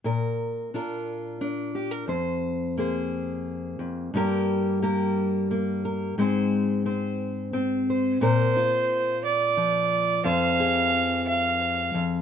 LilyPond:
<<
  \new Staff \with { instrumentName = "Fiddle" } { \time 6/8 \key bes \mixolydian \tempo 4. = 59 r2. | r2. | r2. | r2. |
c''4. d''4. | f''4. f''4 r8 | }
  \new Staff \with { instrumentName = "Steel-string acoustic guitar" } { \time 6/8 \key bes \mixolydian << { bes'4 <d' f' bes'>4 d'8 g'16 bes'16 | c''4 <bes aes' c''>2 | <g bes g' bes'>4 <bes g' bes'>4 bes8 bes'8 | <aes c' c''>4 <c' c''>4 c'8 c''8 |
bes'8 f'2~ f'8 | c''8 aes'2~ aes'8 | } \\ { bes,2. | f,2~ f,8 f,8 | g,2. | aes,2. |
bes,2 f4 | f,2~ f,8 f,8 | } >> }
>>